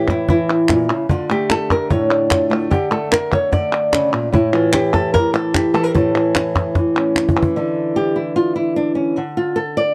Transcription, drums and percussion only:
0.08 cajon bass, cajon slap
0.29 cajon bass
0.69 cajon bass, cajon slap, clap
0.90 cajon slap
1.09 cajon bass
1.50 cajon slap, clap
1.70 cajon bass, cajon slap
1.91 cajon bass
2.31 cajon bass, cajon slap, clap
2.71 cajon bass
3.12 cajon slap, clap
3.32 cajon bass
3.53 cajon bass, cajon slap
3.93 cajon slap, clap
4.13 cajon slap, clap
4.34 cajon bass
4.73 cajon slap, clap
4.93 cajon bass, cajon slap, clap
5.15 cajon bass, cajon slap
5.55 cajon bass, cajon slap, clap
5.75 cajon slap
5.95 cajon bass
6.35 cajon slap, clap
6.55 cajon bass, cajon slap, clap
6.75 cajon bass, cajon slap
7.16 cajon slap, clap
7.29 cajon bass
7.42 cajon bass

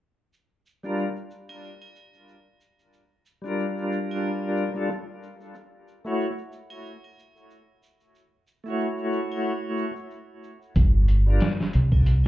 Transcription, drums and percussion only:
0.33 shaker
0.66 shaker
0.84 shaker
0.97 shaker
1.16 shaker
1.31 shaker
1.49 triangle, shaker
1.64 shaker
1.82 triangle
1.96 shaker
2.14 shaker
2.28 shaker
2.61 shaker
2.79 shaker
2.93 shaker
3.26 shaker
3.45 shaker
3.59 shaker
3.78 shaker
3.92 shaker
4.11 triangle, shaker
4.26 shaker
4.57 shaker
4.75 shaker
4.90 shaker
5.23 shaker
5.41 shaker
5.55 shaker
5.88 shaker
6.05 shaker
6.20 shaker
6.38 shaker
6.52 shaker
6.70 triangle, shaker
6.86 shaker
7.04 triangle
7.19 shaker
7.37 shaker
7.50 shaker
7.83 shaker
8.00 shaker
8.15 shaker
8.47 shaker
8.66 shaker
8.80 shaker
8.98 shaker
9.13 shaker
9.32 triangle, shaker
9.45 shaker
9.77 shaker
9.96 shaker
10.11 shaker
10.44 shaker
10.62 shaker
10.75 kick, closed hi-hat, shaker
11.08 closed hi-hat, shaker
11.27 shaker
11.40 snare, closed hi-hat, shaker
11.60 snare, shaker
11.73 closed hi-hat, shaker
11.92 kick, triangle, shaker
12.05 closed hi-hat, shaker
12.24 triangle

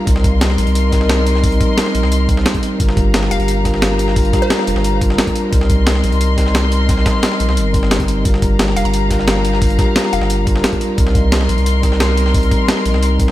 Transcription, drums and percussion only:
0.07 kick, closed hi-hat
0.16 snare
0.24 kick, closed hi-hat
0.41 snare, closed hi-hat
0.50 snare
0.58 closed hi-hat
0.67 closed hi-hat
0.75 closed hi-hat
0.92 kick, snare, closed hi-hat
1.01 snare
1.09 snare, closed hi-hat
1.27 closed hi-hat
1.35 snare
1.44 kick, closed hi-hat, open hi-hat
1.52 closed hi-hat
1.61 kick, closed hi-hat
1.78 snare, closed hi-hat
1.86 snare
1.95 closed hi-hat
2.03 snare
2.12 closed hi-hat
2.29 kick, closed hi-hat
2.37 snare
2.46 snare, closed hi-hat
2.54 kick, closed hi-hat
2.63 closed hi-hat
2.80 kick, closed hi-hat
2.89 snare
2.97 kick, closed hi-hat
3.14 snare, closed hi-hat
3.23 snare
3.31 closed hi-hat
3.40 closed hi-hat
3.48 closed hi-hat
3.65 kick, snare, closed hi-hat
3.74 snare
3.82 snare, closed hi-hat
3.99 closed hi-hat
4.08 snare
4.16 kick, closed hi-hat, open hi-hat
4.25 closed hi-hat
4.33 kick, snare, closed hi-hat
4.50 snare, closed hi-hat
4.59 snare
4.67 closed hi-hat
4.76 snare
4.84 closed hi-hat
5.01 kick, closed hi-hat
5.10 snare
5.18 snare, closed hi-hat
5.27 kick, closed hi-hat
5.35 closed hi-hat
5.53 kick, closed hi-hat
5.61 snare
5.70 kick, closed hi-hat
5.87 snare, closed hi-hat
5.95 snare
6.04 closed hi-hat
6.12 closed hi-hat
6.21 closed hi-hat
6.38 kick, snare, closed hi-hat
6.46 snare
6.55 snare, closed hi-hat
6.72 closed hi-hat
6.89 kick, snare, closed hi-hat
6.97 snare
7.06 kick, snare, closed hi-hat
7.23 snare, closed hi-hat
7.32 snare
7.40 closed hi-hat
7.49 snare
7.57 closed hi-hat
7.74 kick, closed hi-hat
7.83 snare
7.91 snare, closed hi-hat
8.00 kick, closed hi-hat
8.08 closed hi-hat
8.25 kick, closed hi-hat
8.34 snare
8.42 kick, closed hi-hat
8.59 snare, closed hi-hat
8.68 snare
8.76 closed hi-hat
8.85 closed hi-hat
8.94 closed hi-hat
9.11 kick, snare, closed hi-hat
9.19 snare
9.28 snare, closed hi-hat
9.45 closed hi-hat
9.53 snare
9.62 kick, closed hi-hat, open hi-hat
9.70 closed hi-hat
9.79 kick, snare, closed hi-hat
9.96 snare, closed hi-hat
10.04 snare
10.13 closed hi-hat
10.21 snare
10.30 closed hi-hat
10.47 kick, closed hi-hat
10.56 snare
10.64 snare, closed hi-hat
10.73 kick, closed hi-hat
10.81 closed hi-hat
10.98 kick, closed hi-hat
11.07 snare
11.15 kick, closed hi-hat
11.32 snare, closed hi-hat
11.41 snare
11.49 closed hi-hat
11.58 closed hi-hat
11.66 closed hi-hat
11.83 kick, snare, closed hi-hat
11.92 snare
12.00 snare, closed hi-hat
12.17 closed hi-hat
12.26 snare
12.34 kick, closed hi-hat, open hi-hat
12.43 closed hi-hat
12.51 kick, closed hi-hat
12.68 snare, closed hi-hat
12.77 snare
12.86 closed hi-hat
12.94 snare
13.03 closed hi-hat
13.20 kick, closed hi-hat
13.28 snare

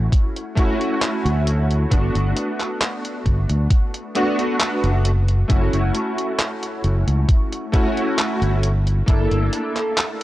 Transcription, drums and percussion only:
0.12 kick, closed hi-hat
0.36 closed hi-hat
0.57 kick, closed hi-hat
0.81 closed hi-hat
1.02 clap, closed hi-hat
1.26 closed hi-hat
1.47 closed hi-hat
1.71 closed hi-hat
1.91 kick, closed hi-hat
2.15 closed hi-hat
2.36 closed hi-hat
2.60 clap, closed hi-hat
2.81 clap, closed hi-hat
3.05 closed hi-hat
3.26 kick, closed hi-hat
3.50 closed hi-hat
3.70 kick, closed hi-hat
3.94 closed hi-hat
4.15 closed hi-hat
4.39 closed hi-hat
4.60 clap, closed hi-hat
4.84 closed hi-hat
5.05 closed hi-hat
5.28 closed hi-hat
5.50 kick, closed hi-hat
5.73 closed hi-hat
5.95 closed hi-hat
6.18 closed hi-hat
6.39 clap, closed hi-hat
6.63 closed hi-hat
6.84 closed hi-hat
7.08 closed hi-hat
7.29 kick, closed hi-hat
7.53 closed hi-hat
7.74 kick, closed hi-hat
7.97 closed hi-hat
8.19 clap, closed hi-hat
8.42 closed hi-hat
8.63 closed hi-hat
8.87 closed hi-hat
9.08 kick, closed hi-hat
9.31 closed hi-hat
9.53 closed hi-hat
9.76 clap, closed hi-hat
9.97 clap, closed hi-hat

